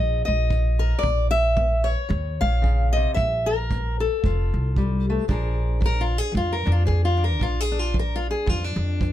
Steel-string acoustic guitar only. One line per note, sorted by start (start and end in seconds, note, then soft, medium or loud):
0.00 0.46 D#3 medium
0.00 0.24 D#5 medium
0.25 0.98 D#5 loud
0.50 0.99 D#3 medium
0.79 1.02 A#4 medium
0.99 1.30 D5 loud
1.03 1.52 A#3 medium
1.31 1.86 E5 loud
1.56 2.06 A#3 medium
1.84 2.93 C#5 loud
2.09 2.58 D#3 medium
2.41 2.92 F5 loud
2.62 2.94 C#3 medium
2.93 3.17 C3 medium
2.93 3.14 D#5 loud
3.14 3.66 A#3 medium
3.14 3.47 E5 loud
3.46 4.00 A#4 loud
3.71 4.19 A#3 medium
4.00 5.28 A4 medium
4.25 4.73 F3 medium
4.25 5.28 F4 soft
4.77 5.09 G3 medium
5.10 5.28 A3 medium
5.28 5.78 A#2 medium
5.28 5.80 F3 soft
5.28 6.65 D4 soft
5.28 6.00 G#4 soft
5.28 5.85 A#4 soft
5.81 6.30 F3 medium
5.86 6.02 A#4 loud
6.01 6.18 F4 medium
6.18 6.36 G#4 medium
6.32 6.82 F3 medium
6.37 6.54 F4 medium
6.53 6.70 A#4 medium
6.65 7.17 D4 soft
6.72 6.86 F4 medium
6.86 7.36 F3 medium
6.86 7.04 G#4 medium
7.05 7.23 F4 medium
7.17 7.63 D4 soft
7.24 7.42 A#4 medium
7.39 7.89 A#2 medium
7.39 7.60 F4 medium
7.60 7.79 G#4 medium
7.72 8.64 D4 soft
7.79 7.96 F4 medium
7.94 8.43 F3 medium
7.99 8.15 A#4 medium
8.16 8.30 F4 medium
8.31 8.49 G#4 medium
8.46 8.96 F3 medium
8.46 8.64 F4 medium
8.64 9.12 D4 medium
9.01 9.12 F3 medium